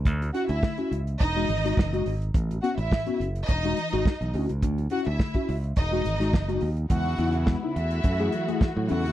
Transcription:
<<
  \new Staff \with { instrumentName = "Violin section" } { \time 4/4 \key e \major \tempo 4 = 105 r8 <fis' fis''>16 <e' e''>8. r8 <dis' dis''>4. r8 | r8 <fis' fis''>16 <e' e''>8. r8 <dis' dis''>4. r8 | r8 <fis' fis''>16 <e' e''>8. r8 <dis' dis''>4. r8 | <fis' fis''>4 r8 <e' e''>4. r8 <fis' fis''>8 | }
  \new Staff \with { instrumentName = "Tine electric piano" } { \time 4/4 \key e \major <d a>16 <e' fis'>16 <cis' e' fis'>16 r16 <d a>16 <cis' e' fis'>16 <e' fis'>16 r8 <gis dis' fis'>16 e16 <gis dis' fis'>16 e16 <gis dis' fis'>16 <dis' fis'>16 r16 | <a, e>16 <cis' fis'>16 <b cis' fis'>16 r16 <a, e>16 <b cis' fis'>16 <cis' fis'>16 r8 <gis dis' fis'>16 e16 <gis dis' fis'>16 <dis' fis'>16 e16 <cis' e' fis'>16 r16 | <d a>16 <e' fis'>16 <cis' e' fis'>16 r16 <d a>16 <cis' e' fis'>16 <e' fis'>16 r8 <gis dis' fis'>16 e16 <gis dis' fis'>16 e16 <gis dis' fis'>16 <dis' fis'>16 r16 | <cis gis>16 <dis' e'>16 <b dis' e'>16 r16 <cis gis>16 <b dis' e'>16 <e' gis'>16 r8 <a e' gis'>16 fis16 <a e' gis'>16 <e' gis'>16 fis16 <cis' e' a'>16 r16 | }
  \new Staff \with { instrumentName = "String section" } { \time 4/4 \key e \major r1 | r1 | r1 | <cis b e'>4. <e a fis'>2 <cis a e'>8 | }
  \new Staff \with { instrumentName = "Fingered electric bass" } { \clef bass \time 4/4 \key e \major d,8 r16 d,16 r8 cis,8 e,,8 gis,,8 fis,,8 gis,,8 | a,,8 r16 a,,16 r8 fis,,8 e,,8 r16 gis,,16 r16 b,,16 d,16 cis,16 | d,8 r16 d,16 r8 cis,8 e,,8 gis,,8 fis,,8 dis,8 | e,8 e,8. r16 e,8 fis,8 r8. a,16 e,16 dis,16 | }
  \new DrumStaff \with { instrumentName = "Drums" } \drummode { \time 4/4 <hh bd>16 hh16 hh16 hh16 <bd sn>16 hh16 hh16 hh16 <hh bd>16 hh16 hh16 <hh sn>16 <bd sn>16 hh16 hho16 hh16 | <hh bd>16 hh16 hh16 hh16 <bd sn>16 hh16 hh16 hh16 <hh bd>16 hh16 hh16 hh16 <bd sn>16 hh16 hho16 hh16 | <hh bd>16 hh16 hh16 hh16 <bd sn>16 <hh bd>16 hho16 hh16 <hh bd>16 hh16 hh16 <hh sn>16 <bd sn>16 hh16 hho16 hh16 | <hh bd>8 hh16 hh16 <bd sn>8 hh16 hh16 <hh bd>8 hh16 hh16 <bd sn>8 hh16 hh16 | }
>>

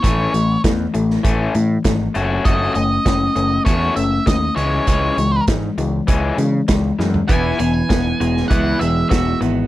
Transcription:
<<
  \new Staff \with { instrumentName = "Lead electric guitar" } { \time 4/4 \key e \major \tempo 4 = 99 cis''4 r2. | dis''8 dis''4. cis''8 e''8 dis''8 cis''8~ | cis''4 r2. | gis''8 gis''4. fis''8 e''8 e''8 r8 | }
  \new Staff \with { instrumentName = "Overdriven electric guitar" } { \time 4/4 \key e \major <e a cis'>8 <e a>8 <e a>8 <e a>8 <e a cis'>8 <e a>8 <e a>8 <a cis' fis'>8 | <a cis' fis'>8 <a cis'>8 <a cis'>8 <a cis'>8 <a cis' fis'>8 <a cis'>8 <a cis'>8 <e gis cis'>8 | <e gis cis'>8 <e gis>8 <e gis>8 <e gis>8 <e gis cis'>8 <e gis>8 <e gis>8 <e gis>8 | <e b e'>8 <e b>8 <e b>8 <e b>8 <e b e'>8 <e b>8 <e b>8 <e b>8 | }
  \new Staff \with { instrumentName = "Clean electric guitar" } { \clef bass \time 4/4 \key e \major r1 | r1 | r1 | e8 e8 b8 gis8 e8 gis8 fis'8 b8 | }
  \new Staff \with { instrumentName = "Picked electric bass" } { \clef bass \time 4/4 \key e \major a,,8 a,,8 e,8 a,,8 a,,8 a,8 gis,,8 fis,,8 | fis,,8 fis,,8 fis,,8 fis,,8 e,8 fis,,8 dis,8 cis,8 | cis,8 cis,8 gis,8 cis,8 cis,8 cis8 cis,8 fis,8 | e,,8 e,,8 e,,8 e,,8 cis,8 e,,8 e,,8 gis,,8 | }
  \new DrumStaff \with { instrumentName = "Drums" } \drummode { \time 4/4 <hh bd>8 hh8 <hh bd sn>8 hh16 sn16 <hh bd>8 hh8 <hh bd sn>8 hh8 | <hh bd>8 hh8 <hh bd sn>8 hh8 <hh bd>8 hh8 <hh bd sn>8 hh8 | <hh bd>8 hh8 <hh bd sn>8 hh8 <hh bd>8 hh8 <hh bd sn>8 sn16 tomfh16 | <hh bd>8 hh8 <hh bd sn>8 hh16 sn16 <hh bd>8 hh8 <hh bd sn>8 hh8 | }
>>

